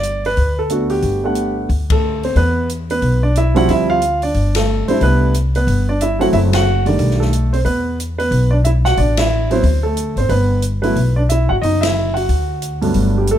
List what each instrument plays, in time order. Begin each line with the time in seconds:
Already playing: upright bass G1, grand piano D5
0.03 closed hi-hat
0.25 grand piano B4, open hi-hat
0.37 upright bass D2, kick, open hi-hat
0.59 grand piano A4
0.70 grand piano A3 B3 D4 F#4, closed hi-hat
0.90 grand piano G4, open hi-hat
1.02 upright bass G1, kick, open hi-hat
1.24 grand piano A3 B3 D4 F#5
1.35 closed hi-hat
1.69 upright bass D2, kick, open hi-hat
1.90 grand piano A3 A4, kick, ride
2.23 grand piano C4 C5, open hi-hat
2.36 upright bass E2, grand piano B3 B4, kick, open hi-hat
2.69 closed hi-hat
2.90 grand piano B3 B4, open hi-hat
3.02 upright bass B1, kick, open hi-hat
3.23 grand piano D4 D5
3.36 grand piano E4 E5, closed hi-hat
3.55 grand piano F3 G3 C4 E4 F#4 F#5, open hi-hat
3.68 upright bass D2, grand piano E4 E5, kick, open hi-hat
3.90 grand piano F4 F5
4.02 closed hi-hat
4.22 grand piano D4 D5, open hi-hat
4.34 upright bass G1, kick, open hi-hat
4.55 grand piano A3 A4, snare, ride
4.88 grand piano G3 A3 C4 D4 E4 C5, muted upright bass stroke, open hi-hat
5.01 upright bass C2, grand piano B3 B4, kick, open hi-hat
5.34 closed hi-hat
5.55 grand piano B3 B4, open hi-hat
5.67 upright bass G1, kick, open hi-hat
5.89 grand piano D4 D5
6.01 grand piano E4 E5, closed hi-hat
6.19 grand piano F#3 A3 C4 E4 F#4 F#5, open hi-hat
6.33 upright bass F#1, grand piano E4 E5, kick, open hi-hat
6.53 grand piano F#4 F#5, snare, ride
6.86 grand piano D#3 G3 A3 D4 D5, open hi-hat
6.99 upright bass B1, kick, open hi-hat
7.11 snare
7.20 grand piano A3 A4, snare
7.33 closed hi-hat
7.53 grand piano C4 C5, open hi-hat
7.65 upright bass E2, grand piano B3 B4, kick, open hi-hat
8.00 closed hi-hat
8.18 grand piano B3 B4, open hi-hat
8.31 upright bass B1, kick, open hi-hat
8.51 grand piano D4 D5
8.64 grand piano E4 E5, closed hi-hat
8.85 grand piano F#4 F#5, snare
8.97 upright bass A1, grand piano D4 D5, kick, open hi-hat
9.17 grand piano E4 E5, snare, ride
9.51 grand piano F#3 B3 C4 E4 C5, open hi-hat
9.63 upright bass D2, kick, open hi-hat
9.83 grand piano A3 A4
9.97 closed hi-hat
10.16 upright bass G#1, grand piano C4 C5, open hi-hat
10.29 upright bass G1, grand piano B3 B4, kick, open hi-hat
10.62 closed hi-hat
10.82 grand piano F#3 A3 B3 E4 B4, open hi-hat
10.96 upright bass B1, kick, open hi-hat
11.16 grand piano D4 D5
11.29 grand piano E4 E5, closed hi-hat
11.49 upright bass G1, grand piano F#4 F#5
11.62 upright bass F#1, grand piano D#4 D#5, kick, open hi-hat
11.81 grand piano E4 E5, snare, ride
12.14 grand piano F#4 F#5, open hi-hat
12.29 upright bass D2, kick, open hi-hat
12.62 closed hi-hat
12.82 grand piano G2 F#3 A3 B3 D4, open hi-hat
12.94 upright bass G1, kick, open hi-hat
13.18 grand piano G3 G4
13.27 grand piano A4, closed hi-hat
13.31 grand piano A3